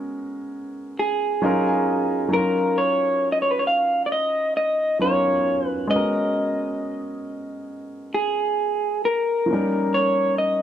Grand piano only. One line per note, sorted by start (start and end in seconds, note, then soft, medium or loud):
0.00 1.37 G#3 medium
0.00 1.38 B3 medium
0.00 1.39 C#4 medium
0.00 1.40 F#4 medium
0.00 1.41 A#4 medium
1.42 2.27 F#3 medium
1.42 2.29 C#4 medium
1.42 2.31 D#4 medium
1.42 2.33 F4 medium
1.42 2.34 A#4 medium
1.42 1.66 D#5 medium
1.67 2.28 G#5 medium
2.29 4.95 F#3 medium
2.29 4.96 C#4 medium
2.33 4.97 D#4 soft
2.33 4.98 F4 medium
2.37 4.99 A#4 medium
4.99 5.89 F#3 soft
4.99 5.90 C#4 soft
4.99 5.91 D#4 soft
4.99 5.91 F4 soft
5.04 5.92 A#4 soft
5.87 9.43 G#3 medium
5.87 9.44 B3 medium
5.92 9.45 C#4 medium
5.92 9.46 F#4 medium
5.96 9.47 A#4 medium
9.46 9.54 F3 soft
9.46 10.62 A#3 medium
9.50 10.62 G3 medium
9.50 10.62 C#4 medium
9.50 10.62 D#4 medium
9.54 10.62 A#4 medium